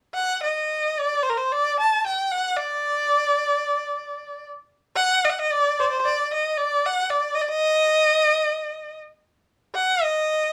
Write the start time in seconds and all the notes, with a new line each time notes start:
0.14 F#5
0.43 D#5
0.99 D5
1.22 C5
1.29 A#4
1.37 C5
1.52 D5
1.80 A5
2.07 G5
2.31 F#5
2.56 D5
4.96 F#5
5.24 D#5
5.29 F#5
5.39 D#5
5.52 D5
5.80 C5 D5
5.92 C5
6.03 D5
6.33 D#5
6.57 D5
6.86 F#5
7.10 D5
7.34 D#5
7.41 D5
7.49 D#5
9.75 F#5
10.04 D#5